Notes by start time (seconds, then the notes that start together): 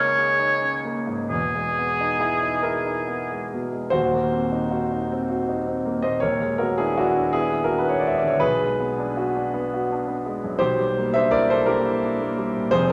Already playing: C#2 A#3 C#4 D#4 G#4 A#4 C#5
0.18 G#4
0.39 D#4
0.62 C#4
0.85 A#3
1.07 G#2
1.29 E1 E2 G#4
1.55 G#3
1.79 B3
2.01 D#4
2.19 E4 G#4
2.43 D#4
2.63 E4 G#4 A#4
2.86 D#4
3.08 B3
3.31 G#3
3.53 B2
3.73 G#3
3.90 D#1 D#2 F#4 C5
4.13 A#3
4.32 C4
4.52 D#4
4.71 F#4
4.92 D#4
5.12 C4
5.30 F#4
5.49 D#4
5.67 C4
5.85 A#3
6.02 A#2 C5 D#5
6.20 D#1 D#2 A#4 C#5
6.42 G#3
6.58 B3 F#4 A#4
6.78 D4 E4 G#4
6.98 D4 E4 F#4
7.17 D4
7.33 B3 E4 G#4
7.52 E4
7.64 F#4 A#4
7.70 D4
7.78 B4
7.88 B3 C#5
8.00 D5
8.05 G#3 E5
8.18 D5
8.24 D3 C#5
8.40 B1 G#4 B4
8.62 G#3
8.80 B3
8.98 D4
9.17 F#4
9.36 D4
9.54 B3
9.74 F#4
9.92 D4
10.08 B3
10.26 G#3
10.44 F#2
10.59 B1 G4 C5
10.79 G3
10.97 A#3
11.14 D4 C5 E5
11.31 E4 A#4 D5
11.50 D4 A4 C5
11.66 A#3 G4 A#4
11.85 E4
12.04 D4
12.20 A#3
12.38 G3
12.56 A#2
12.71 F1 F2 G#4 C5